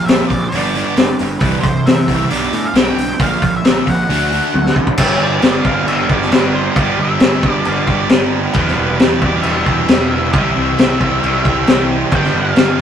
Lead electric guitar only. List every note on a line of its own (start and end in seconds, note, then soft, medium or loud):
0.06 0.27 E5 medium
0.27 0.47 D5 medium
0.49 1.14 D5 medium
1.40 1.60 B4 medium
1.61 1.86 C5 medium
1.86 2.30 E5 loud
2.31 2.66 D5 loud
2.65 2.77 F5 medium
2.77 3.22 G5 loud
3.22 3.56 F5 loud
3.56 3.90 E5 loud
3.89 4.74 F#5 medium
5.00 5.22 E5 loud
5.23 5.64 D5 loud
5.66 5.88 F5 loud
5.88 6.10 E5 loud
6.11 6.34 D5 medium
6.33 6.54 B4 medium
6.55 6.78 C5 medium
6.76 7.00 D5 loud
7.00 7.52 E5 loud
7.52 7.66 D5 loud
7.67 8.08 D5 medium
8.54 8.76 B4 loud
8.77 9.24 B4 loud
9.22 9.42 D5 loud
9.42 10.31 E5 loud
10.32 11.86 E5 loud
12.15 12.37 G5 loud
12.36 12.81 F5 loud